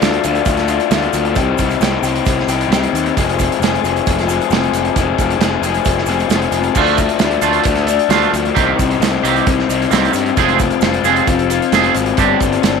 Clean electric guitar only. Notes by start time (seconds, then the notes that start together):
6.76 F3 A3 D4 F4
6.99 muted clean electric guitar stroke
7.21 muted clean electric guitar stroke
7.42 F3 A3 D4 F4
7.65 muted clean electric guitar stroke
7.87 muted clean electric guitar stroke
8.09 F3 A3 D4 F4
8.32 muted clean electric guitar stroke
8.55 D#3 A#3 C4 G4
8.78 muted clean electric guitar stroke
9.02 muted clean electric guitar stroke
9.23 D#3 A#3 C4 G4
9.47 muted clean electric guitar stroke
9.70 muted clean electric guitar stroke
9.90 D#3 A#3 C4 G4
10.13 muted clean electric guitar stroke
10.37 F3 G#3 C4 G#4
10.60 muted clean electric guitar stroke
10.82 muted clean electric guitar stroke
11.05 F3 G#3 C4 G#4
11.27 muted clean electric guitar stroke
11.51 muted clean electric guitar stroke
11.73 F3 G#3 C4 G#4
11.95 muted clean electric guitar stroke
12.18 G3 C4 D4 G4
12.40 muted clean electric guitar stroke
12.63 muted clean electric guitar stroke